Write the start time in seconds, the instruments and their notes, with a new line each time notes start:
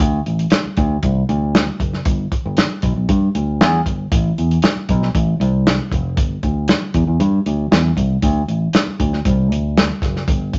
0.00 fingered electric bass D2, kick, closed hi-hat
0.26 fingered electric bass A1, closed hi-hat
0.39 closed hi-hat
0.50 snare, closed hi-hat
0.65 muted fingered electric bass stroke
0.77 fingered electric bass D2, kick, closed hi-hat
1.03 fingered electric bass C2, kick, closed hi-hat
1.29 fingered electric bass D2, closed hi-hat
1.55 snare, closed hi-hat
1.80 fingered electric bass F#1, kick, closed hi-hat
1.93 snare
2.05 fingered electric bass G1, kick, closed hi-hat
2.32 kick, closed hi-hat
2.46 fingered electric bass G1
2.57 snare, closed hi-hat
2.82 fingered electric bass B1, kick, closed hi-hat
2.96 fingered electric bass B1
3.09 fingered electric bass G2, kick, closed hi-hat
3.35 fingered electric bass D2, closed hi-hat
3.61 fingered electric bass E2, snare, closed hi-hat
3.86 fingered electric bass G1, kick, closed hi-hat
4.12 fingered electric bass A1, kick, closed hi-hat
4.38 fingered electric bass E2, closed hi-hat
4.51 closed hi-hat
4.62 snare, closed hi-hat
4.77 muted fingered electric bass stroke
4.89 fingered electric bass B1, kick, closed hi-hat
5.03 snare
5.15 fingered electric bass A1, kick, closed hi-hat
5.40 fingered electric bass C2, closed hi-hat
5.67 snare, closed hi-hat
5.92 fingered electric bass F1, kick, closed hi-hat
6.17 fingered electric bass G1, kick, closed hi-hat
6.43 fingered electric bass D2, kick, closed hi-hat
6.68 snare, closed hi-hat
6.94 fingered electric bass E2, kick, closed hi-hat
7.07 fingered electric bass E2
7.20 fingered electric bass G2, closed hi-hat
7.46 fingered electric bass D2, closed hi-hat
7.71 fingered electric bass E2, snare, closed hi-hat
7.97 fingered electric bass C2, kick, closed hi-hat
8.22 fingered electric bass D2, kick, closed hi-hat
8.48 fingered electric bass A1, closed hi-hat
8.73 snare, closed hi-hat
8.87 muted fingered electric bass stroke
9.00 fingered electric bass D2, kick, closed hi-hat
9.13 snare
9.25 fingered electric bass C2, kick, closed hi-hat
9.50 fingered electric bass D2, closed hi-hat
9.77 snare, closed hi-hat
10.02 fingered electric bass F#1, kick, snare, closed hi-hat
10.16 snare
10.28 fingered electric bass G1, kick, closed hi-hat
10.53 kick, closed hi-hat